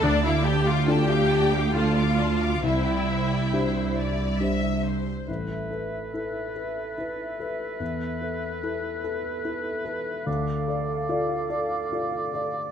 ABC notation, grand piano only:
X:1
M:3/4
L:1/8
Q:1/4=71
K:Am
V:1 name="Grand piano"
D,,2 [DFA]2 [DFA]2 | C,,2 [DGc]2 [DGc]2 | A,,, [AB] [EAB] [AB] [EAB] [AB] | E,, [AB] [EAB] [AB] [EAB] [AB] |
D,, [Ad] [FAd] [Ad] [FAd] [Ad] |]